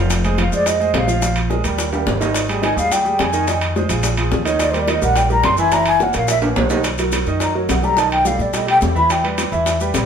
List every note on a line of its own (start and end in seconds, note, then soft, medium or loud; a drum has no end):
0.00 0.47 F1 medium
0.00 0.19 F3 medium
0.00 0.19 F4 medium
0.00 0.19 F5 medium
0.10 high bongo medium
0.10 high timbale medium
0.10 maracas medium
0.24 0.36 G#3 medium
0.24 0.36 G#4 medium
0.24 0.36 C5 medium
0.24 high bongo soft
0.24 high timbale medium
0.24 maracas soft
0.38 0.50 F3 medium
0.38 0.50 F4 medium
0.38 0.50 F5 medium
0.38 0.53 F5 medium
0.38 high bongo medium
0.38 high timbale medium
0.38 maracas soft
0.52 0.92 F2 medium
0.52 0.75 G#3 medium
0.52 0.76 G#4 medium
0.52 0.76 C5 medium
0.52 0.69 D5 medium
0.52 high bongo soft
0.52 maracas medium
0.66 0.98 D#5 medium
0.66 high bongo medium
0.66 high timbale medium
0.66 maracas medium
0.80 1.04 G#3 medium
0.80 1.04 G#4 medium
0.80 1.04 C5 medium
0.80 high bongo soft
0.80 maracas soft
0.94 1.59 A#1 medium
0.94 1.38 F5 medium
0.94 high bongo medium
0.94 low bongo medium
0.94 high timbale medium
0.94 low timbale medium
0.94 maracas soft
1.07 1.19 F3 medium
1.07 1.20 F4 medium
1.07 1.20 F5 medium
1.07 maracas medium
1.22 1.45 F3 medium
1.22 1.46 F4 medium
1.22 1.46 F5 medium
1.22 high bongo medium
1.22 high timbale medium
1.22 maracas medium
1.36 high bongo soft
1.36 high timbale medium
1.36 maracas soft
1.50 1.62 G#3 medium
1.50 1.62 G#4 medium
1.50 1.62 A#4 medium
1.50 high bongo medium
1.50 maracas soft
1.64 2.04 D#2 medium
1.64 1.88 G3 medium
1.64 1.88 G4 medium
1.64 1.88 A#4 medium
1.64 high bongo soft
1.64 high timbale medium
1.64 maracas medium
1.78 high bongo medium
1.78 high timbale medium
1.78 maracas medium
1.93 2.16 G3 medium
1.93 2.16 G4 medium
1.93 2.16 A#4 medium
1.93 high timbale medium
1.93 maracas soft
2.06 2.72 G#1 medium
2.06 high bongo medium
2.06 low bongo medium
2.06 low timbale medium
2.06 maracas soft
2.20 2.44 D#3 medium
2.20 2.44 D#4 medium
2.20 2.44 D#5 medium
2.20 high bongo soft
2.20 low timbale medium
2.20 maracas medium
2.34 high bongo medium
2.34 high timbale medium
2.34 maracas medium
2.49 2.61 G3 medium
2.49 2.61 G4 medium
2.49 2.61 G#4 medium
2.49 high bongo soft
2.49 high timbale medium
2.49 maracas soft
2.61 2.74 D#3 medium
2.61 2.74 D#4 medium
2.61 2.74 D#5 medium
2.61 2.77 G#5 medium
2.61 high bongo medium
2.61 high timbale medium
2.61 maracas soft
2.77 3.16 D#2 medium
2.77 3.00 G3 medium
2.77 3.00 G4 medium
2.77 3.00 G#4 medium
2.77 2.94 F5 loud
2.77 high bongo soft
2.77 maracas medium
2.92 3.23 G5 medium
2.92 high bongo medium
2.92 high timbale medium
2.92 maracas medium
3.05 3.28 G3 medium
3.05 3.28 G4 medium
3.05 3.29 G#4 medium
3.05 high bongo soft
3.05 maracas soft
3.19 3.84 F2 medium
3.19 3.63 G#5 medium
3.19 high bongo medium
3.19 low bongo medium
3.19 high timbale medium
3.19 maracas soft
3.33 3.45 D#3 medium
3.33 3.45 D#4 medium
3.33 3.45 D#5 medium
3.33 maracas medium
3.47 3.70 D#3 medium
3.47 3.71 D#4 medium
3.47 3.71 D#5 medium
3.47 high bongo medium
3.47 high timbale medium
3.47 maracas medium
3.61 high bongo soft
3.61 high timbale medium
3.61 maracas soft
3.76 3.87 G#3 medium
3.76 3.88 G#4 medium
3.76 3.88 C5 medium
3.76 high bongo medium
3.76 maracas soft
3.89 4.29 A#1 medium
3.89 4.13 F3 medium
3.89 4.13 F4 medium
3.89 4.13 G#4 medium
3.89 high bongo soft
3.89 high timbale medium
3.89 maracas medium
4.03 high bongo medium
4.03 high timbale medium
4.03 maracas medium
4.17 4.41 F3 medium
4.17 4.41 F4 medium
4.17 4.41 G#4 medium
4.17 high timbale medium
4.17 maracas soft
4.32 4.97 D#2 medium
4.32 high bongo medium
4.32 low bongo medium
4.32 maracas soft
4.45 4.68 D#3 medium
4.45 4.69 D#4 medium
4.45 4.62 C#5 medium
4.45 4.69 D#5 medium
4.45 high bongo soft
4.45 high timbale medium
4.45 maracas medium
4.59 4.72 D5 loud
4.59 high bongo medium
4.59 high timbale medium
4.59 maracas medium
4.71 4.85 G3 medium
4.71 4.85 G4 medium
4.71 4.85 A#4 medium
4.71 4.81 C5 medium
4.71 high bongo soft
4.71 high timbale medium
4.71 maracas soft
4.80 4.91 D5 medium
4.88 4.99 D#3 medium
4.88 5.00 D#4 medium
4.88 5.00 D#5 medium
4.88 5.03 D#5 medium
4.88 high bongo medium
4.88 high timbale medium
4.88 maracas soft
5.02 5.41 A#1 medium
5.02 5.25 G3 medium
5.02 5.25 G4 medium
5.02 5.25 A#4 medium
5.02 5.19 F#5 loud
5.02 high bongo soft
5.02 maracas medium
5.16 5.31 G5 medium
5.16 high bongo medium
5.16 high timbale medium
5.16 maracas medium
5.29 5.53 G3 medium
5.29 5.53 G4 medium
5.29 5.53 A#4 medium
5.29 5.46 A#5 loud
5.29 high bongo soft
5.29 maracas soft
5.43 6.09 F#1 medium
5.43 5.59 C6 loud
5.43 high bongo medium
5.43 low bongo medium
5.43 high timbale medium
5.43 maracas soft
5.57 5.70 E3 medium
5.57 5.70 E4 medium
5.57 5.70 E5 loud
5.57 5.75 G#5 loud
5.57 maracas medium
5.71 5.95 E3 medium
5.71 5.96 E4 medium
5.71 5.96 E5 medium
5.71 5.87 A#5 loud
5.71 high bongo medium
5.71 high timbale medium
5.71 maracas medium
5.86 6.04 G#5 loud
5.86 high bongo soft
5.86 high timbale loud
5.86 maracas soft
6.00 6.12 A#3 medium
6.00 6.12 A#4 medium
6.00 6.12 C#5 medium
6.00 6.16 F#5 medium
6.00 high bongo medium
6.00 maracas soft
6.13 6.54 A#1 medium
6.13 6.37 A#3 medium
6.13 6.38 A#4 medium
6.13 6.38 C#5 medium
6.13 6.29 F5 medium
6.13 high bongo soft
6.13 high timbale medium
6.13 maracas medium
6.28 6.38 E5 medium
6.28 high bongo medium
6.28 high timbale medium
6.28 maracas medium
6.42 6.65 A#3 medium
6.42 6.65 A#4 medium
6.42 6.65 C#5 medium
6.42 high timbale loud
6.42 maracas soft
6.56 7.21 B1 medium
6.56 high bongo medium
6.56 low bongo medium
6.56 low timbale loud
6.56 maracas soft
6.70 6.82 D#3 medium
6.70 6.82 D#4 medium
6.70 6.82 D#5 medium
6.70 high bongo soft
6.70 low timbale loud
6.70 maracas medium
6.84 high bongo medium
6.84 high timbale medium
6.84 maracas medium
6.98 7.22 F#3 medium
6.98 7.22 F#4 medium
6.98 7.23 A#4 medium
6.98 high bongo soft
6.98 high timbale medium
6.98 maracas medium
7.12 high bongo medium
7.12 high timbale loud
7.12 maracas medium
7.26 7.66 F#2 medium
7.26 7.50 D#3 medium
7.26 7.51 D#4 medium
7.26 7.51 D#5 medium
7.26 high bongo soft
7.26 maracas soft
7.40 7.55 A#5 medium
7.40 high bongo medium
7.40 high timbale medium
7.40 maracas medium
7.54 7.78 F#3 medium
7.54 7.78 F#4 medium
7.54 7.78 A#4 medium
7.54 7.72 C#5 medium
7.69 8.34 B1 medium
7.69 7.86 F#5 medium
7.69 high bongo soft
7.69 low bongo medium
7.69 high timbale medium
7.69 low timbale medium
7.69 maracas medium
7.83 7.95 G3 medium
7.83 7.95 G4 medium
7.83 7.95 A4 medium
7.83 8.00 A#5 loud
7.83 high bongo soft
7.83 maracas soft
7.97 8.20 D#3 medium
7.97 8.20 D#4 medium
7.97 8.21 D#5 medium
7.97 8.11 A5 medium
7.97 high bongo medium
7.97 high timbale medium
7.97 maracas medium
8.11 8.28 G5 loud
8.11 high bongo soft
8.11 high timbale medium
8.25 8.48 G3 medium
8.25 8.49 G4 medium
8.25 8.49 A4 medium
8.25 8.43 F5 medium
8.25 high bongo medium
8.25 maracas medium
8.39 8.79 B2 medium
8.39 8.57 D5 medium
8.39 high bongo soft
8.39 maracas soft
8.53 8.65 G3 medium
8.53 8.65 G4 medium
8.53 8.65 A4 medium
8.53 8.69 D#5 medium
8.53 high bongo medium
8.53 high timbale medium
8.53 maracas medium
8.67 8.90 G3 medium
8.67 8.90 G4 medium
8.67 8.91 A4 medium
8.67 8.78 G5 loud
8.67 high timbale medium
8.81 9.47 E2 medium
8.81 high bongo soft
8.81 low bongo medium
8.81 low timbale medium
8.81 maracas medium
8.95 9.19 E3 medium
8.95 9.19 E4 medium
8.95 9.19 E5 medium
8.95 9.13 B5 loud
8.95 high bongo soft
8.95 maracas soft
9.10 9.25 G5 medium
9.10 high bongo medium
9.10 high timbale medium
9.10 maracas medium
9.24 9.47 G3 medium
9.24 9.47 G4 medium
9.24 9.47 B4 medium
9.24 high bongo soft
9.24 high timbale medium
9.38 high bongo medium
9.38 high timbale medium
9.38 maracas medium
9.52 9.91 E2 medium
9.52 9.75 E3 medium
9.52 9.75 E4 medium
9.52 9.75 E5 medium
9.52 high bongo soft
9.52 maracas soft
9.66 high bongo medium
9.66 high timbale medium
9.66 maracas medium
9.80 10.04 G3 medium
9.80 10.04 G4 medium
9.80 10.04 B4 medium
9.80 maracas medium
9.94 10.06 A#1 medium
9.94 high bongo soft
9.94 low bongo medium
9.94 high timbale medium
9.94 low timbale medium
9.94 maracas medium